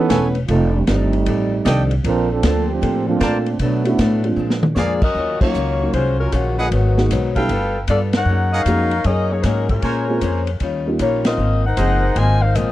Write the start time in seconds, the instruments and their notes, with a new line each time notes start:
Already playing: trombone section E3 B3 C#4 A4
0.10 upright bass E1, steel-string acoustic guitar A3 C#4 G#4 B4, trumpet section A4 B4 C#5 G#5, kick, snare, hi-hat pedal, ride
0.35 ride
0.48 upright bass F1, steel-string acoustic guitar F3 D#4 A4 D5, trombone section A3 C4 D#4 F4, kick, ride
0.74 trombone section G3 A3 C4 D4
0.87 upright bass G1, upright piano D#3 A3 C4 D4 G4, steel-string acoustic guitar F3 D#4 A4 D5, trombone section G3 A3 C4 D#4, kick, snare, hi-hat pedal, ride
1.13 ride
1.26 upright bass A1, steel-string acoustic guitar F3 D#4 A4 D5, kick, ride
1.65 upright bass C2, upright piano D#3 A3 C4 D4 G4, steel-string acoustic guitar F3 D#4 A4 D5, trumpet section A4 D5 D#5 G5, kick, snare, hi-hat pedal, ride
1.91 ride
2.04 upright bass A#1, trombone section F3 C4 D4 A#4, steel-string acoustic guitar A#3 D4 A4 C5, kick, ride
2.30 trombone section F3 C4 D4 A4
2.43 upright bass D2, upright piano F3 A#3 C4 D4 A4, steel-string acoustic guitar A#3 D4 A4 C5, kick, snare, hi-hat pedal, ride
2.69 trombone section F3 C4 D4 G4
2.81 upright bass A2, steel-string acoustic guitar A#3 D4 A4 C5, kick, ride
3.07 upright piano F3 A#3 C4 D4 A4, trombone section A3 C4 D4 F4
3.20 upright bass A#2, steel-string acoustic guitar A#3 D4 A4 C5, trumpet section A#4 C5 D5 A5, kick, snare, hi-hat pedal, ride
3.46 ride
3.59 upright bass B2, steel-string acoustic guitar B2 F#3 A3 D4, trombone section F#3 A3 B3 D4, kick, ride
3.84 upright piano A3 B3 C#4 D4 F#4, trombone section A3 B3 D4 E4, ride
3.98 upright bass A2, steel-string acoustic guitar B2 F#3 A3 D4, kick, snare, hi-hat pedal, ride
4.23 trombone section F3 G#3 A#3 D4, upright piano G#3 A#3 C4 D4 F4, ride
4.36 upright bass A#2, steel-string acoustic guitar A#2 F3 G#3 D4
4.50 snare
4.63 mid tom
4.74 upright bass F2, steel-string acoustic guitar A#2 F3, saxophone section A#3 F4 G#4 C#5 D5, trumpet section G#4 A#4 D5 F5, snare, hi-hat pedal
4.78 steel-string acoustic guitar G#3 D4
5.02 saxophone section C#4 F#4 A#4 D#5, kick, crash
5.15 upright bass D#2, steel-string acoustic guitar D#3 F#3 C#4
5.19 steel-string acoustic guitar F4
5.40 upright piano F#3 A#3 C#4 D#4 F4, saxophone section A#3 F4 F#4 C#5, muted upright bass stroke, kick, crash
5.54 upright bass C#2, steel-string acoustic guitar D#3 F#3 C#4 F4, hi-hat pedal
5.79 upright piano F#3 A#3 C#4 D#4 F#4
5.93 upright bass C2, steel-string acoustic guitar D#3 F#3 C#4 F4, saxophone section G#3 C#4 F4 C5, kick, ride
6.20 saxophone section F#3 C#4 F4 A#4
6.32 upright bass A#1, saxophone section C#3 F3 A#3 F#4, steel-string acoustic guitar D#3 F#3 C#4 F4, kick, hi-hat pedal, ride
6.58 saxophone section D#3 G#3 B3 F#4, trumpet section G#4 B4 D#5 F#5
6.71 upright bass G#1, steel-string acoustic guitar G#2 F#3 B3 D#4, kick, ride
6.97 upright piano G#3 A#3 B3 D#4 F#4, snare
7.10 upright bass B1, steel-string acoustic guitar G#2 F#3 B3 D#4, kick, hi-hat pedal, ride
7.35 upright piano G3 A3 B3 D4 E4, trumpet section A4 B4 F5 G5, kick, ride
7.49 upright bass G1, steel-string acoustic guitar G3 B3 F4 A4, kick, ride
7.88 upright bass G2, steel-string acoustic guitar G3 B3 F4 A4, saxophone section B3 F4 A4 D5, kick, hi-hat pedal, ride
8.13 saxophone section D#4 A#4 C#5 F#5, snare, ride
8.25 upright bass F#2, steel-string acoustic guitar F#3 A#3
8.30 steel-string acoustic guitar D#4 G#4
8.52 saxophone section D#4 A#4 C#5 F5, trumpet section G#4 A#4 D#5 F#5
8.65 upright bass F2, steel-string acoustic guitar F#3 A#3 D#4 G#4, upright piano G#3 A#3 C#4 D#4 F#4, kick, hi-hat pedal, ride
8.91 ride
9.04 upright bass F#2, steel-string acoustic guitar F#3 A#3 D#4 G#4, saxophone section C#4 G#4 A#4 D#5, kick, ride
9.31 saxophone section A#3 D#4 G#4 C#5
9.43 upright bass G#2, steel-string acoustic guitar F#3 A#3 D#4 G#4, saxophone section G#3 C#4 D#4 A#4, kick, snare, hi-hat pedal, ride
9.69 saxophone section G#3 C#4 F4 A#4, kick, ride
9.82 upright bass A#2, steel-string acoustic guitar A#3 C#4 G#4 C5, trumpet section A#4 C5 C#5 G#5, kick, ride
10.08 upright piano G#3 A#3 C4 C#4 F4
10.21 upright bass F2, steel-string acoustic guitar A#3 C#4 G#4 C5, kick, hi-hat pedal, ride
10.47 ride
10.60 upright bass D#2, steel-string acoustic guitar D#3 G3 C#4 F4, kick, ride
10.86 upright piano G3 A#3 C#4 D#4 F4
10.99 upright bass A#1, steel-string acoustic guitar D#3 G3 C#4 F4, saxophone section A#3 F4 G4 C#5, kick, hi-hat pedal, ride
11.25 saxophone section C4 F4 A#4 D#5, snare, ride
11.38 upright bass G#1, steel-string acoustic guitar G#2 F3 A#3 C4
11.66 saxophone section D#4 A#4 C5 F#5
11.77 upright bass F#1, steel-string acoustic guitar G#2 F3 A#3 C4, upright piano F3 A#3 C4 D#4 G#4, trumpet section G#4 A#4 C5 D#5, kick, hi-hat pedal, ride
12.16 upright bass G#1, steel-string acoustic guitar G#2 F3 A#3 C4, saxophone section F4 C5 D#5 G#5, kick, ride
12.42 saxophone section D#4 A#4 C5 F5
12.55 upright bass A#1, steel-string acoustic guitar G#2 F3 A#3 C4, saxophone section C4 F4 A#4 D#5, kick, hi-hat pedal, ride